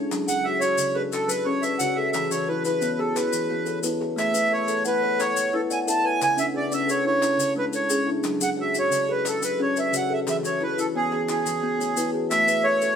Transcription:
Already playing: C#4 D4 F#4 G#4 A4
0.12 F#3 D4, clap, maracas
0.28 F#3 G#4 F#5, maracas
0.44 F#4 C#5 E5
0.60 F#4 C#5, maracas
0.78 C#3, maracas
0.95 G#4 A4 B4
1.12 F#4 A4, clap, maracas
1.28 F#3 B4, maracas
1.45 C#4 G#4 C#5
1.62 B4 D5 E5, maracas
1.79 C#3 F#4 C#5 F#5, maracas
1.95 G#4 A4 E5
2.12 E3 G#4 E5, clap, maracas
2.31 E3 F#4 C#5, clap, maracas
2.48 E4 B4
2.65 E4 B4, clap, maracas
2.81 B3 C#5, maracas
2.98 F#4 G#4 A4, clap
3.16 E4 G#4 B4, clap, maracas
3.33 E3, maracas
3.50 B3 F#4
3.65 A4 C#5, maracas
3.83 B3 E4 B4, clap, maracas
4.01 G#4, clap
4.16 A3 E5, clap, maracas
4.34 A3 B4, maracas
4.51 A4 C#5 E5
4.68 A4, maracas
4.85 E4 B4 F#5, maracas
5.02 B4 C#5
5.18 A4 C#5, clap, maracas
5.35 A3, maracas
5.53 E4 A4 B4
5.70 D5 F#5 G#5, maracas
5.86 E4 A4 E5 A5, maracas
6.04 B4 C#5 G#5
6.20 C#3 B4 G#5, clap, maracas
6.37 C#4 D4 E5, maracas
6.54 C#4 G#4 D5
6.72 C#4 E5, maracas
6.87 G#4 A4 C#5, maracas
7.05 D4 E4 C#5
7.22 C#4 E4, clap, maracas
7.38 C#3, maracas
7.55 G#3 D4 B4
7.73 A4 C#5, maracas
7.89 C#4 G#4, maracas
8.07 D4 E4
8.23 F#3 D4, clap, maracas
8.41 F#3 G#4 F#5, maracas
8.57 F#4 C#5 E5
8.74 F#4, maracas
8.79 C#5
8.91 C#3, maracas
9.08 G#4 A4 B4
9.25 F#4 A4, clap, maracas
9.42 F#3 B4, maracas
9.59 C#4 G#4 C#5
9.76 B4 D5 E5, maracas
9.92 C#3 F#4 C#5, maracas
9.97 F#5
10.10 G#4 A4 E5
10.27 E3 G#4 E5, clap, maracas
10.43 E3 F#4 C#5, clap, maracas
10.61 E4 B4, clap
10.78 E4 A4, maracas
10.95 B3 G#4 C#5
11.12 F#4 G#4, clap
11.29 E4 G#4, clap, maracas
11.46 E3, clap, maracas
11.63 B3 F#4
11.79 A3 C#5, maracas
11.96 B3 E4 B4, maracas
12.12 F#4 G#4
12.30 A3 F#4 E5, clap, maracas
12.48 A3 B4, maracas
12.64 A4 C#5 E5
12.82 A4, maracas

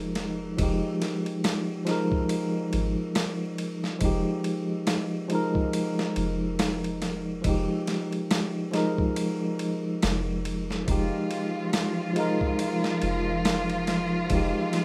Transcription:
Already playing: F1 F3 G#3 D#4 A#4
0.15 snare, ride
0.57 F1 F3 G#3, kick, ride
0.61 D#4 G4
1.02 snare, ride
1.26 ride
1.44 snare, ride
1.85 F3 G#3, snare, ride
1.89 D#4 A#4
2.12 kick
2.29 ride
2.73 G#1, ride
3.15 snare, ride
3.58 ride
3.84 snare
3.99 F1 F3 G#3, kick, ride
4.03 D#4 G4
4.44 ride
4.87 snare, ride
5.28 F3 G#3, ride
5.33 D#4 A#4
5.55 kick
5.73 ride
5.99 snare
6.16 F1, ride
6.59 snare, ride
6.84 ride
7.02 snare, ride
7.42 F1 F3 G#3, kick, ride
7.46 D#4 G4
7.87 snare, ride
8.12 ride
8.31 snare, ride
8.71 F3 G#3 D#4, snare, ride
8.77 A#4
8.98 kick
9.16 ride
9.59 ride
10.02 F1, snare, ride
10.45 ride
10.71 snare
10.85 F1 F3 G#3 F4, kick, ride
10.89 D#4 G4
11.31 ride
11.73 snare, ride
12.14 F3 G#3, ride
12.18 D#4 A#4
12.41 kick
12.59 ride
12.84 snare
13.02 F1, ride
13.45 snare, ride
13.70 ride
13.87 snare, ride
14.29 F1 F3 G#3, kick, ride
14.33 D#4 G4
14.73 snare, ride

